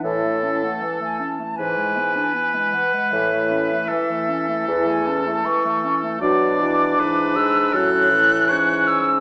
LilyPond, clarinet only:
\new Staff \with { instrumentName = "Clarinet" } { \time 4/4 \key a \major \tempo 4 = 78 e16 a16 cis'16 a16 e16 a16 cis'16 a16 e16 gis16 b16 d'16 b16 gis16 e16 gis16 | e16 a16 cis'16 a16 e16 a16 cis'16 a16 e16 a16 cis'16 a16 e16 a16 cis'16 a16 | d'2 cis'4 cis'4 | }